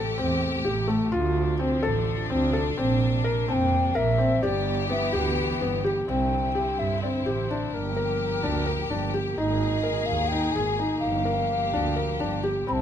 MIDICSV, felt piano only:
0, 0, Header, 1, 2, 480
1, 0, Start_track
1, 0, Tempo, 471328
1, 1146, Time_signature, 7, 3, 24, 8
1, 13052, End_track
2, 0, Start_track
2, 0, Title_t, "Felt piano"
2, 0, Program_c, 0, 0
2, 0, Note_on_c, 0, 69, 71
2, 150, Note_off_c, 0, 69, 0
2, 181, Note_on_c, 0, 60, 69
2, 590, Note_off_c, 0, 60, 0
2, 659, Note_on_c, 0, 67, 69
2, 865, Note_off_c, 0, 67, 0
2, 891, Note_on_c, 0, 57, 63
2, 1100, Note_off_c, 0, 57, 0
2, 1139, Note_on_c, 0, 65, 79
2, 1548, Note_off_c, 0, 65, 0
2, 1623, Note_on_c, 0, 60, 71
2, 1827, Note_off_c, 0, 60, 0
2, 1860, Note_on_c, 0, 69, 76
2, 2269, Note_off_c, 0, 69, 0
2, 2342, Note_on_c, 0, 60, 74
2, 2547, Note_off_c, 0, 60, 0
2, 2579, Note_on_c, 0, 69, 64
2, 2785, Note_off_c, 0, 69, 0
2, 2825, Note_on_c, 0, 60, 80
2, 3231, Note_off_c, 0, 60, 0
2, 3303, Note_on_c, 0, 70, 73
2, 3507, Note_off_c, 0, 70, 0
2, 3545, Note_on_c, 0, 60, 72
2, 3952, Note_off_c, 0, 60, 0
2, 4023, Note_on_c, 0, 70, 72
2, 4227, Note_off_c, 0, 70, 0
2, 4257, Note_on_c, 0, 60, 68
2, 4463, Note_off_c, 0, 60, 0
2, 4508, Note_on_c, 0, 67, 77
2, 4913, Note_off_c, 0, 67, 0
2, 4985, Note_on_c, 0, 59, 71
2, 5188, Note_off_c, 0, 59, 0
2, 5221, Note_on_c, 0, 67, 68
2, 5629, Note_off_c, 0, 67, 0
2, 5713, Note_on_c, 0, 59, 70
2, 5912, Note_off_c, 0, 59, 0
2, 5951, Note_on_c, 0, 67, 62
2, 6152, Note_off_c, 0, 67, 0
2, 6194, Note_on_c, 0, 60, 69
2, 6596, Note_off_c, 0, 60, 0
2, 6669, Note_on_c, 0, 67, 60
2, 7074, Note_off_c, 0, 67, 0
2, 7151, Note_on_c, 0, 60, 59
2, 7352, Note_off_c, 0, 60, 0
2, 7393, Note_on_c, 0, 67, 61
2, 7593, Note_off_c, 0, 67, 0
2, 7644, Note_on_c, 0, 62, 59
2, 8042, Note_off_c, 0, 62, 0
2, 8112, Note_on_c, 0, 70, 62
2, 8515, Note_off_c, 0, 70, 0
2, 8586, Note_on_c, 0, 62, 64
2, 8789, Note_off_c, 0, 62, 0
2, 8822, Note_on_c, 0, 70, 61
2, 9027, Note_off_c, 0, 70, 0
2, 9066, Note_on_c, 0, 62, 64
2, 9269, Note_off_c, 0, 62, 0
2, 9308, Note_on_c, 0, 67, 56
2, 9510, Note_off_c, 0, 67, 0
2, 9550, Note_on_c, 0, 63, 78
2, 9954, Note_off_c, 0, 63, 0
2, 10016, Note_on_c, 0, 70, 62
2, 10427, Note_off_c, 0, 70, 0
2, 10509, Note_on_c, 0, 63, 60
2, 10711, Note_off_c, 0, 63, 0
2, 10749, Note_on_c, 0, 68, 65
2, 10951, Note_off_c, 0, 68, 0
2, 10989, Note_on_c, 0, 63, 63
2, 11394, Note_off_c, 0, 63, 0
2, 11460, Note_on_c, 0, 70, 62
2, 11869, Note_off_c, 0, 70, 0
2, 11950, Note_on_c, 0, 62, 65
2, 12151, Note_off_c, 0, 62, 0
2, 12184, Note_on_c, 0, 70, 57
2, 12388, Note_off_c, 0, 70, 0
2, 12425, Note_on_c, 0, 62, 63
2, 12628, Note_off_c, 0, 62, 0
2, 12663, Note_on_c, 0, 67, 57
2, 12867, Note_off_c, 0, 67, 0
2, 12904, Note_on_c, 0, 60, 68
2, 13052, Note_off_c, 0, 60, 0
2, 13052, End_track
0, 0, End_of_file